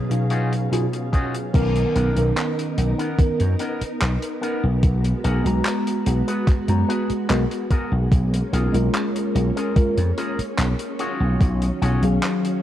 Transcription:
Already playing: clean electric guitar B2, string machine B2 F#3 B3 C#4 G#4 F5
0.10 tine electric piano B2 F#3 C#4 D#4 G#4 F5, closed hi-hat
0.30 clean electric guitar C#4 D#4 F4 F#4 G#4, closed hi-hat
0.53 closed hi-hat
0.71 tine electric piano B2 F#3 C#4 D#4 F4 G#4, clean electric guitar B2, closed hi-hat
0.93 closed hi-hat
1.13 clean electric guitar C#4 D#4 F4 F#4 G#4, kick, closed hi-hat
1.35 closed hi-hat
1.53 slap bass B1, tine electric piano D#3 B3 C#4 A#4, string machine B3 D#4 A#4, kick, closed hi-hat, crash
1.76 closed hi-hat
1.95 slap bass B1, clean electric guitar B3 C#4 D#4 A#4, closed hi-hat
2.15 slap bass B1, tine electric piano D#3 B3 C#4 A#4, closed hi-hat
2.37 clap, closed hi-hat
2.59 closed hi-hat
2.77 slap bass B1, muted clean electric guitar stroke, closed hi-hat
2.98 clean electric guitar B3 C#4 D#4 A#4, closed hi-hat
3.18 tine electric piano D#3 B3 C#4 A#4, muted slap bass stroke, kick, closed hi-hat
3.40 slap bass F#2, closed hi-hat
3.59 clean electric guitar B3 C#4 D#4 A#4, closed hi-hat
3.81 muted slap bass stroke, closed hi-hat
4.01 slap bass B1, clap, closed hi-hat
4.22 closed hi-hat
4.41 clean electric guitar B3 C#4 D#4 A#4, closed hi-hat
4.64 slap bass B1
4.83 slap bass B1, string machine G#3 F#4, kick, closed hi-hat
5.04 closed hi-hat
5.24 slap bass B1, clean electric guitar B3 F#4 G#4 A#4, closed hi-hat
5.44 slap bass B1, tine electric piano G#3 B3 F#4 A#5, closed hi-hat
5.65 clap, closed hi-hat
5.87 closed hi-hat
6.06 slap bass B1, muted clean electric guitar stroke, closed hi-hat
6.27 clean electric guitar B3 F#4 G#4 B4, closed hi-hat
6.47 kick, clap, closed hi-hat
6.68 slap bass F#2, tine electric piano G#3 B3 F#4 A#5, closed hi-hat
6.88 clean electric guitar B3 F#4 G#4 B4, closed hi-hat
7.10 muted slap bass stroke, closed hi-hat
7.29 slap bass B1, tine electric piano G#3 B3 F#4 A#4, clap, closed hi-hat
7.51 closed hi-hat
7.70 clean electric guitar B3 F#4 G#4 A#4, kick, closed hi-hat
7.92 slap bass B1
8.12 slap bass B1, string machine A#3 C#4, kick, closed hi-hat
8.34 closed hi-hat
8.53 slap bass B1, clean electric guitar C#4 F4 G#4 A#4, closed hi-hat
8.73 slap bass B1, tine electric piano G#3 C#4 F4 A#4, closed hi-hat
8.94 clap, closed hi-hat
9.16 closed hi-hat
9.35 slap bass B1, muted clean electric guitar stroke, closed hi-hat
9.56 clean electric guitar C#4 F4 G#4 A#4, closed hi-hat
9.75 tine electric piano G#3 C#4 F4 A#4, muted slap bass stroke, kick, closed hi-hat
9.97 slap bass F2, closed hi-hat
10.17 clean electric guitar C#4 F4 G#4 A#4, closed hi-hat
10.39 muted slap bass stroke, closed hi-hat
10.58 slap bass B1, clap, closed hi-hat
10.79 closed hi-hat
10.99 string machine D#3 F#3, clean electric guitar C#4 F4 F#4 G#4, closed hi-hat
11.20 slap bass B1
11.41 slap bass B1, kick, closed hi-hat
11.62 closed hi-hat
11.82 slap bass B1, clean electric guitar C#4 F4 F#4 G#4, closed hi-hat
12.02 slap bass B1, tine electric piano F#3 C#4 G#4 F5, closed hi-hat
12.23 clap, closed hi-hat
12.45 closed hi-hat

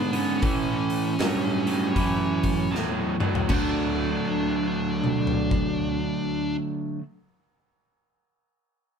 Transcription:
Already playing: picked electric bass G#2, lead electric guitar D4
0.12 overdriven electric guitar D3 B3, lead electric guitar C#4, open hi-hat
0.42 overdriven electric guitar A2 E3, picked electric bass A2, kick, open hi-hat
0.90 open hi-hat
1.19 picked electric bass G2, overdriven electric guitar A2 F#3, snare, open hi-hat
1.67 overdriven electric guitar A2 F#3, open hi-hat
1.96 picked electric bass F#2, overdriven electric guitar A2 E3, kick, open hi-hat
2.43 kick, open hi-hat
2.72 picked electric bass E2, overdriven electric guitar A2 F#3, snare
3.20 overdriven electric guitar A2 F#3, muted picked electric bass stroke, mid tom
3.35 floor tom
3.49 picked electric bass D2, overdriven electric guitar D3 F#3 A3, lead electric guitar D4, kick, crash
3.53 overdriven electric guitar D4
5.04 mid tom
5.27 floor tom
5.51 kick

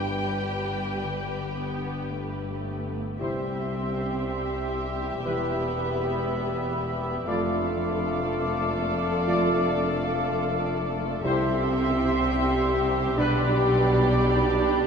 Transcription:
Already playing: double bass section G1, harp G2 B3 D4 B4, cello section G2, viola section G3, violin section G4 B4 G5
0.28 harp G4
0.66 harp B3
1.03 harp D3
1.41 harp B3
1.57 viola section B3
1.77 harp D4
2.12 viola section A3, harp B4
2.49 harp G4
2.85 harp B3
3.19 cello section C2, double bass section C2, harp C3, french horn section G3 E4, bassoon G3, viola section C4, clarinet G4, violin section G4 E5, trumpet section C5, oboe E5, flute section C6
3.47 harp C4
3.73 harp G4
3.99 harp E5
4.25 harp G5
4.50 harp C5
4.76 harp G4
5.00 harp E4
5.23 double bass section E1, cello section E2, harp E3, french horn section G3 E4, viola section B3, trumpet section B4, flute section B5
5.52 harp E4
5.77 harp B4
6.02 harp G5
6.27 harp B5
6.53 harp E5
6.78 harp B4
7.04 harp G4
7.25 double bass section F1, cello section F2, harp F3, french horn section A3 F4, viola section A3, bassoon A3, clarinet F4, violin section A4 D5, trumpet section D5, oboe F5, flute section D6
7.54 harp D4
7.79 harp A4
8.04 harp F5
8.29 harp A5
8.54 harp D5
8.78 harp A4
9.03 harp F4
9.26 harp F3, french horn section A3 F4, trumpet section D5
9.53 harp D4
9.77 harp A4
10.02 harp F5
10.26 harp A5
10.51 harp D5
10.75 harp A4
10.99 harp F4
11.22 double bass section C2, harp C3, cello section C3, french horn section G3 E4, viola section C4, clarinet G4, violin section G4 E5, trumpet section C5, oboe E5, flute section C6
11.49 harp G3
11.72 harp G4
11.97 harp E5
12.20 bassoon G3, harp G5
12.45 harp G4
12.69 harp E4
12.93 harp G3
13.17 double bass section B1, harp B2, cello section B2, french horn section G3 D4, viola section D4, trumpet section B4, oboe D5, violin section D5, flute section B5
13.43 harp G3
13.68 harp G4
13.95 harp D5
14.21 harp G5
14.49 harp G4
14.75 harp D4

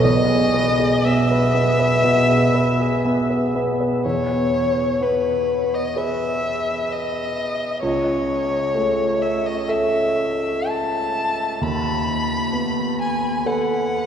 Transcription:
0.03 grand piano E1 E2, violin D#5
0.29 grand piano G#4
0.54 grand piano B4
0.80 grand piano G#4
1.05 grand piano B3, violin E5
1.31 grand piano B4
1.54 grand piano B3
1.79 grand piano B4
2.04 grand piano B2
2.29 grand piano G#4
2.54 grand piano B4
2.80 grand piano G#4
3.05 grand piano B3
3.30 grand piano B4
3.56 grand piano B3
3.81 grand piano B4
4.05 grand piano E2, violin C#5
5.01 grand piano B3, violin B4
5.74 violin D#5
5.96 grand piano G#4 B4, violin E5
6.92 violin D#5
7.83 grand piano C#2, violin C#5
8.75 grand piano A3
9.22 violin E5
9.46 violin D#5
9.68 grand piano A4 E5, violin E5
10.68 violin A5
11.61 grand piano D#2, violin B5
12.53 grand piano B3
13.01 violin G#5
13.46 grand piano A4 B4, violin F#5

